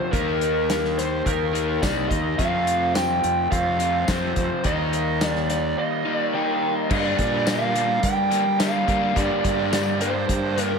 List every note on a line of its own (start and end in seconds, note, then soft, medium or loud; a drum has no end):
0.00 0.11 F2 medium
0.00 0.12 C3 medium
0.00 0.10 F3 medium
0.00 0.12 F3 medium
0.00 0.11 A3 medium
0.00 0.11 C4 medium
0.00 0.12 F4 medium
0.12 1.22 D#2 loud
0.12 1.52 D#3 medium
0.12 1.53 A#3 medium
0.12 1.52 D#4 loud
0.12 1.24 G4 loud
0.12 1.00 A#4 medium
0.12 kick loud
0.12 closed hi-hat medium
0.41 closed hi-hat medium
0.70 snare loud
0.70 closed hi-hat medium
0.70 tambourine loud
0.84 snare soft
0.98 1.27 C5 medium
0.98 snare soft
0.98 closed hi-hat medium
1.25 1.78 D#2 medium
1.25 2.36 D#3 medium
1.25 2.37 A#3 medium
1.25 2.37 D#4 medium
1.25 2.38 G4 medium
1.25 1.84 A#4 medium
1.25 kick medium
1.25 closed hi-hat medium
1.53 1.81 D#3 medium
1.53 1.81 A#3 medium
1.53 1.80 D#4 medium
1.53 closed hi-hat medium
1.82 2.08 C2 medium
1.82 2.37 D#3 medium
1.82 2.38 A#3 medium
1.82 2.38 D#4 medium
1.82 2.09 D5 medium
1.82 kick medium
1.82 snare loud
1.82 closed hi-hat medium
1.82 tambourine loud
2.09 2.36 D#2 medium
2.09 2.39 D#5 medium
2.09 kick medium
2.09 closed hi-hat medium
2.38 3.78 F2 medium
2.38 3.19 F2 loud
2.38 3.79 C3 medium
2.38 3.78 F3 loud
2.38 3.50 A3 loud
2.38 3.50 C4 loud
2.38 3.51 F4 loud
2.38 2.91 F5 medium
2.38 kick medium
2.38 closed hi-hat medium
2.67 closed hi-hat medium
2.95 3.48 G5 loud
2.95 snare loud
2.95 closed hi-hat medium
2.95 tambourine loud
3.24 3.49 F2 medium
3.24 closed hi-hat medium
3.50 4.04 F2 medium
3.50 4.62 F3 medium
3.50 4.63 A3 medium
3.50 4.63 C4 medium
3.50 4.63 F4 medium
3.50 4.10 F5 medium
3.50 kick medium
3.50 closed hi-hat medium
3.79 4.06 F2 medium
3.79 4.07 C3 medium
3.79 4.06 F3 medium
3.79 closed hi-hat medium
4.07 4.62 F2 medium
4.07 4.34 F2 medium
4.07 4.63 C3 medium
4.07 4.64 F3 medium
4.07 4.66 C5 medium
4.07 kick medium
4.07 snare loud
4.07 closed hi-hat medium
4.07 tambourine loud
4.36 4.49 F2 medium
4.36 kick medium
4.36 closed hi-hat medium
4.64 5.73 D#2 loud
4.64 6.04 D#3 loud
4.64 5.76 G3 medium
4.64 6.04 A#3 loud
4.64 6.04 D#4 loud
4.64 5.25 D#5 medium
4.64 kick medium
4.64 closed hi-hat medium
4.93 closed hi-hat medium
5.21 5.50 D5 medium
5.21 snare loud
5.21 closed hi-hat medium
5.21 tambourine loud
5.35 snare soft
5.50 5.78 D5 medium
5.50 snare soft
5.50 closed hi-hat medium
5.77 6.88 D#3 medium
5.77 6.89 G3 medium
5.77 6.89 A#3 medium
5.77 6.89 D#4 medium
5.77 6.16 D#5 loud
6.05 6.32 D#3 medium
6.05 6.32 A#3 medium
6.05 6.32 D#4 medium
6.16 6.30 D5 loud
6.33 6.88 D#3 medium
6.33 6.89 A#3 medium
6.33 6.90 D#4 medium
6.33 6.92 D#5 medium
6.33 6.74 G5 medium
6.89 7.45 G2 loud
6.89 7.16 G2 loud
6.89 7.45 D3 medium
6.89 7.33 G3 loud
6.89 7.33 A#3 loud
6.89 9.13 D4 medium
6.89 7.31 D4 loud
6.89 9.13 G4 medium
6.89 9.13 A#4 medium
6.89 7.49 D5 medium
6.89 kick loud
6.89 crash loud
7.19 7.99 A#2 medium
7.19 kick medium
7.19 closed hi-hat medium
7.31 7.47 G3 medium
7.31 7.47 A#3 medium
7.31 7.47 D4 medium
7.45 8.58 G2 medium
7.45 7.72 D3 medium
7.45 7.74 G3 medium
7.45 7.75 A#3 loud
7.45 7.75 D4 loud
7.45 8.00 F5 medium
7.45 snare loud
7.45 closed hi-hat medium
7.45 tambourine loud
7.74 9.14 G2 medium
7.74 7.88 D3 medium
7.74 7.87 G3 medium
7.74 7.87 A#3 medium
7.74 7.87 D4 medium
7.74 closed hi-hat medium
7.88 muted overdriven electric guitar stroke soft
8.03 8.84 G3 medium
8.03 8.61 G5 loud
8.03 kick medium
8.03 closed hi-hat medium
8.31 8.45 D3 medium
8.31 8.45 G3 medium
8.31 8.44 A#3 medium
8.31 8.44 D4 medium
8.31 closed hi-hat medium
8.45 muted overdriven electric guitar stroke medium
8.58 9.01 G2 medium
8.58 8.85 D3 medium
8.58 8.74 G3 loud
8.58 8.73 A#3 loud
8.58 8.72 D4 loud
8.58 9.19 F5 loud
8.58 snare loud
8.58 closed hi-hat loud
8.58 tambourine loud
8.73 8.86 G3 medium
8.73 8.87 A#3 medium
8.73 8.88 D4 medium
8.87 9.15 D3 medium
8.87 9.02 G3 medium
8.87 9.13 G3 medium
8.87 9.01 A#3 medium
8.87 9.00 D4 medium
8.87 kick medium
8.87 closed hi-hat medium
9.01 9.15 G3 medium
9.01 9.16 A#3 medium
9.01 9.16 D4 medium
9.15 9.71 G2 loud
9.15 9.29 G2 loud
9.15 9.72 D3 loud
9.15 9.59 G3 loud
9.15 9.58 A#3 loud
9.15 10.79 D4 medium
9.15 9.57 D4 loud
9.15 10.79 G4 medium
9.15 10.79 A#4 medium
9.15 10.01 D5 medium
9.15 kick loud
9.15 closed hi-hat medium
9.44 10.25 G2 loud
9.44 kick medium
9.44 closed hi-hat medium
9.58 9.72 G3 medium
9.58 9.73 A#3 medium
9.58 9.73 D4 medium
9.72 10.29 G2 loud
9.72 9.99 D3 medium
9.72 10.00 G3 loud
9.72 10.01 A#3 loud
9.72 10.02 D4 loud
9.72 snare loud
9.72 closed hi-hat loud
9.72 tambourine loud
10.00 10.79 G2 medium
10.00 10.15 D3 medium
10.00 10.14 G3 medium
10.00 10.14 A#3 medium
10.00 10.14 D4 medium
10.00 10.63 C5 medium
10.00 closed hi-hat medium
10.15 muted overdriven electric guitar stroke medium
10.29 10.79 G2 loud
10.29 kick medium
10.29 closed hi-hat loud
10.57 10.72 D3 medium
10.57 10.71 G3 medium
10.57 10.71 A#3 medium
10.57 10.71 D4 medium
10.57 closed hi-hat medium
10.63 10.79 A#4 medium
10.72 muted overdriven electric guitar stroke medium